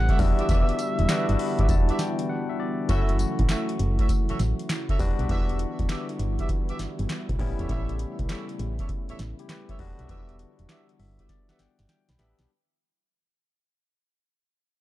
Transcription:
Already playing: A1 C#3 E3 G3 A3 B3 C#4 E4 F#5
0.08 G4 A4 C#5 E5, kick, closed hi-hat
0.18 E1 D3 G3 B3 D4 E4 F#4 E5, kick, open hi-hat, tambourine
0.39 G4 B4 D5 E5, closed hi-hat
0.49 E1 G4 B4 D5 E5, kick, closed hi-hat, tambourine
0.69 closed hi-hat
0.79 closed hi-hat, tambourine
0.99 E1, closed hi-hat
1.09 G3 B3 D4 F#4 G4 B4 D5 E5, snare, clap, closed hi-hat, tambourine
1.29 G1, closed hi-hat
1.39 B5, open hi-hat
1.59 G1 G4 B4 D5 E5, kick, closed hi-hat
1.69 E1 A5, kick, closed hi-hat, tambourine
1.89 G4 B4 D5 E5, closed hi-hat
1.99 G5, snare, closed hi-hat, tambourine
2.19 closed hi-hat
2.29 F#5
2.49 E5
2.60 D5
2.89 F#1 C#3 E3 F#3 A3 C#4 E4 F#4 A4 C#5 E5, kick, closed hi-hat, tambourine
3.09 closed hi-hat
3.19 closed hi-hat, tambourine
3.39 A1, kick, closed hi-hat
3.49 F#4 A4 C#5 E5, snare, clap, closed hi-hat, tambourine
3.69 closed hi-hat
3.79 F#1, closed hi-hat
3.99 F#4 A4 C#5 E5, kick, closed hi-hat
4.09 kick, closed hi-hat, tambourine
4.29 A1 F#4 A4 C#5 E5, closed hi-hat
4.39 A1, snare, closed hi-hat, tambourine
4.59 closed hi-hat
4.69 snare, clap, closed hi-hat, tambourine
4.89 F#4 A4 C#5 E5, kick, closed hi-hat
4.99 E1 D3 E3 G3 B3 D4 F#4, kick, open hi-hat, tambourine
5.19 B1 G4 B4 D5 E5, closed hi-hat
5.29 E1 G4 B4 D5 E5, kick, closed hi-hat
5.49 closed hi-hat
5.59 closed hi-hat
5.79 E1, kick, closed hi-hat
5.89 G4 B4 D5 E5, snare, clap, closed hi-hat
6.09 closed hi-hat
6.19 G1, closed hi-hat
6.39 G4 B4 D5 E5, kick, closed hi-hat
6.49 kick, closed hi-hat
6.69 G4 B4 D5 E5, closed hi-hat
6.79 G1, snare, closed hi-hat
6.99 G1, closed hi-hat
7.09 snare, clap, closed hi-hat
7.29 B1, kick, closed hi-hat
7.39 A1 C#3 G3 A3 B3 C#4 E4, kick, open hi-hat
7.59 E1 G4 A4 C#5 E5, closed hi-hat
7.69 A1 G4 A4 C#5 E5, kick, closed hi-hat
7.89 closed hi-hat
7.99 closed hi-hat
8.19 B1, kick, closed hi-hat
8.29 G4 A4 C#5 E5, snare, clap, closed hi-hat
8.49 closed hi-hat
8.59 A1, closed hi-hat
8.79 G4 A4 C#5 E5, kick, closed hi-hat
8.89 kick, closed hi-hat
9.09 A1 G4 A4 C#5 E5, closed hi-hat
9.19 A1, snare, closed hi-hat
9.39 E4 G4, closed hi-hat
9.49 G4 B4, snare, clap, closed hi-hat
9.69 G4 A4 C#5 E5, kick, closed hi-hat
9.79 E1 D3 G3 B3 D4 E4 F#4, kick, open hi-hat
9.99 B1 G4 B4 D5 E5, closed hi-hat
10.09 E1 G4 B4 D5 E5, kick, closed hi-hat
10.29 closed hi-hat
10.39 closed hi-hat
10.59 E1, closed hi-hat
10.69 G4 B4 D5 E5, snare, clap, closed hi-hat
10.89 closed hi-hat
11.00 G1 E5, open hi-hat
11.19 G4 B4 D5 E5, kick, closed hi-hat
11.29 D5, kick, snare, closed hi-hat
11.49 G4 B4 D5 E5 F#5, snare, closed hi-hat
11.59 G1 G5, snare, closed hi-hat
11.79 G1, snare, closed hi-hat
11.89 G5, snare, closed hi-hat
12.09 B1 B5, snare, closed hi-hat
12.19 A1 G3 B3 D4 G4 B4 D5 E5 B5, snare, closed hi-hat
12.39 B1, snare, closed hi-hat

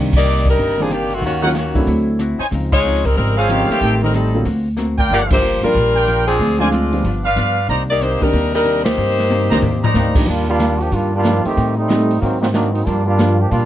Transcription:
Already playing: C2 C3 D#3 G3 A#3 C4 D4
0.13 D#4 G4 D5, kick, crash
0.17 A#3
0.24 C3 D#3 A#3 D4
0.46 D4 D#4 A#4, kick
0.50 G3
0.56 G1 C3 D#3 A#3 D4, kick, open hi-hat
0.78 D#3 F3 G3 A#3 C4 D4 G#4
0.90 C3 D#3 A#3 D4 G4, closed hi-hat
1.10 D#3 A3 C4 F#4, open hi-hat
1.21 D#2 D#3 A#3 C#4 F#4, kick, open hi-hat
1.25 D#3 F#4
1.42 D#3 F#3 A#3 C#4 D#4 F4 A#4 C#5 F#5
1.46 F#3 A#3 F4
1.54 D#3 A#3 C#4 F#4, snare, closed hi-hat
1.58 C#4
1.74 F#3 A3 C4 D4 E4, kick, open hi-hat
1.86 D2 D3 C4 E4 F#4, kick, open hi-hat
2.19 D3 C4 E4 F#4, closed hi-hat
2.39 D#4 C5 C#5 G#5, muted upright bass stroke, open hi-hat
2.51 C#2 C#3 F3 C4 D#4, kick, open hi-hat
2.72 G#3 D#4 F4 C#5, kick, crash
2.84 C#3 F3 C4 D#4
3.05 G3 C4 D#4 A#4, kick, open hi-hat
3.16 G#1 C#3 F3 G3 C4 D#4 A#4, kick, open hi-hat
3.37 F3 C4 D#4 G#4 C5 C#5 F5
3.48 C#3 D#3 F3 G#3 C4 C#4 D#4 G4, closed hi-hat
3.69 D#3 A3 C4 G4, muted upright bass stroke, snare, open hi-hat
3.80 A1 A2 G3 C4 D#4 A4 C5 G5, kick, open hi-hat
4.02 D#3 G3 A3 C4 D#4 A#4
4.13 A2 G3 C4 D#4 A4, closed hi-hat
4.34 D3 F#3 A#3 C4 F4
4.45 D2 D3 A#3 C4 F#4, kick, open hi-hat
4.77 D3 A#3 C4 F#4, snare, closed hi-hat
4.98 F4 A#4 D5 G5, kick, open hi-hat
5.09 G1 G2 F3 A#3 D4 F4 G4 D5, kick, open hi-hat
5.30 F3 G3 A#3 D4 F4 G4 C5, kick, crash
5.42 G2 F3 A#3 D4
5.63 F3 G3 A#3 D4 F4 A#4, muted upright bass stroke, open hi-hat
5.75 A#1 G2 F3 A#3 D4, kick, open hi-hat
5.95 F4 A#4 D5 G5
6.07 G2 F3 A#3 D4, closed hi-hat
6.27 F3 C4 D4 G#4, open hi-hat
6.39 D2 D3 G#3 C4 F4, kick, open hi-hat
6.59 F3 G#3 C4 D4 F4 C5 D5 G#5
6.72 D3 G#3 C4 F4, closed hi-hat
6.92 F3 G3 B3 D4 F4, open hi-hat
7.04 G1 G2 F3 B3 D4, kick, open hi-hat
7.25 F4 B4 D5 F5
7.36 G2 F3 B3 D4, closed hi-hat
7.68 C2 C3 D#3 A#3 D4 D#4 C5 D5 A#5, kick, open hi-hat
7.90 A#3 D#4 G4 D5
8.01 C3 D#3 A#3 D4 D#4 G4 C5, closed hi-hat
8.21 D#3 G3 A#3 C4 D4 D#4 G4 A#4, muted upright bass stroke, kick, open hi-hat
8.33 D#2 C3 D#3 A#3 D4, kick, open hi-hat
8.55 G3 D4 D#4 A#4
8.65 C3 D#3 A#3 D4, closed hi-hat
8.84 A#3 D#4 G4 C5, snare, ride
8.96 G2 C3 D#3 A#3 D4
9.18 snare
9.29 C3 D#3 A#3 D4, high tom
9.50 C#2 D#3 A#3 C4 D4 D#4 G4 C5 D5 A#5, snare
9.62 D#2 C3 D#3 A#3 D4, floor tom
9.84 D#4 C5 D5 A#5, floor tom
9.94 D2 C3 D#3 G3 A#3 C4 D4, snare
10.15 D#3 F3 G3 A#3 D4 D#4 G4, kick, crash
10.27 D#2 D#3 G3 A#3 D4 F4
10.49 G3 A#3 D4 F4
10.59 D#3 G3 D4 F4, snare, closed hi-hat
10.80 F3 A#3 D4 G4, open hi-hat
10.91 G2 D#3 G3 A#3 D4 F4, kick, open hi-hat
11.14 G3 A#3 D4 F4
11.22 D#3 F3 G3 A#3 D4 D#4 F4 G4, snare, closed hi-hat
11.44 D#3 A3 C4 G4, muted upright bass stroke, open hi-hat
11.56 A2 G3 C4 D#4, kick, open hi-hat
11.77 G3 A3 C4 D#4
11.88 A2 G3 A3 C4 D#4 G4, snare, closed hi-hat
12.11 open hi-hat
12.19 G#2 D#3 F#3 A#3 C4, kick, open hi-hat
12.23 C4
12.41 D#3 F#3 A#3 C4, snare
12.52 G#2 D#3 F#3 A#3 C4 D4, snare, closed hi-hat
12.73 F#3 A#3 C4 D#4, open hi-hat
12.84 G2 F3 G3 A#3 D4 F4, kick, open hi-hat
13.06 G3 A#3 D4 F4
13.18 G2 F3 G3 A#3 D4 F4, snare, closed hi-hat
13.40 F3 A#3 D4 G4
13.50 G2 A#2 F3 G3 A#3 D4 F4, kick, open hi-hat
13.54 D4

